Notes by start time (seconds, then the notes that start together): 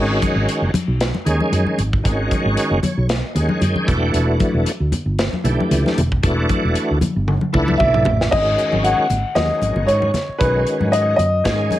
Already playing: G#1 D#3 G#3 C#4 F#4
0.22 kick, closed hi-hat, high conga
0.35 G#1
0.49 closed hi-hat
0.62 F#1
0.74 muted fretless electric bass stroke, closed hi-hat, high conga, low conga
0.88 B1
1.01 snare, closed hi-hat
1.15 high conga
1.25 D#2 D#3 G#3 C#4 G#4, closed hi-hat, low conga
1.40 high conga
1.52 F#2, closed hi-hat, low conga
1.66 muted fretless electric bass stroke, high conga
1.78 G#1, closed hi-hat, low conga
1.93 kick
2.04 G#1 D#3 G#3 C#4 F#4, kick, closed hi-hat
2.31 kick, closed hi-hat, high conga
2.45 G#1
2.57 closed hi-hat
2.71 F#1
2.83 C#5, closed hi-hat, high conga, low conga
2.97 B1
3.09 snare, closed hi-hat
3.34 D#2 D#3 G#3 C#4 G#4 F#5, closed hi-hat, low conga
3.49 muted fretless electric bass stroke, high conga
3.61 F#2 G5, closed hi-hat, low conga
3.76 muted fretless electric bass stroke, high conga
3.87 E1 E3 A3 D4 F#4, kick, closed hi-hat
4.14 E1, closed hi-hat
4.40 kick, closed hi-hat, high conga
4.54 E1
4.66 closed hi-hat
4.80 D2
4.92 muted fretless electric bass stroke, closed hi-hat, high conga, low conga
5.06 G1
5.19 snare, closed hi-hat
5.33 muted fretless electric bass stroke, high conga
5.44 B1 E3 A3 D4 G4, closed hi-hat, low conga
5.59 muted fretless electric bass stroke, high conga
5.71 C#2, closed hi-hat, low conga
5.85 muted fretless electric bass stroke, snare, high conga
5.98 E1, closed hi-hat, low conga
6.12 kick
6.23 E1 E3 A3 D4 F#4, kick, closed hi-hat
6.49 kick, closed hi-hat, high conga
6.64 E1
6.75 closed hi-hat
6.91 D2
7.01 muted fretless electric bass stroke, closed hi-hat, high conga, low conga
7.16 G1
7.28 high tom
7.41 high conga
7.53 C#2 E3 A3 D4 E4 F#5, kick, low conga
7.68 high conga
7.78 B1 D5 E5, kick, low conga
7.94 mid tom, high conga
8.05 A1, floor tom, low conga
8.21 snare
8.31 G#1 D#3 G#3 C#4 F#4 D#5, kick, crash
8.58 closed hi-hat
8.72 G#1, high conga
8.84 F#5, closed hi-hat
9.10 G#1, closed hi-hat, low conga
9.35 D#2 D#3 G#3 C#4 F#4 D#5, snare, closed hi-hat, high conga
9.50 muted fretless electric bass stroke
9.61 G#1, closed hi-hat, high conga
9.76 G#1, low conga
9.87 G#2 C#5, closed hi-hat
10.02 high conga
10.14 snare, closed hi-hat, high conga, low conga
10.29 muted fretless electric bass stroke
10.38 B1 D#3 G#3 C#4 F#4 B4, kick, closed hi-hat
10.66 muted fretless electric bass stroke, closed hi-hat
10.80 G#2, high conga
10.92 D#5, closed hi-hat
11.16 F#2 D#5, closed hi-hat, low conga
11.44 G#2 D#3 G#3 C#4 G#4, kick, snare, closed hi-hat, high conga
11.71 closed hi-hat, high conga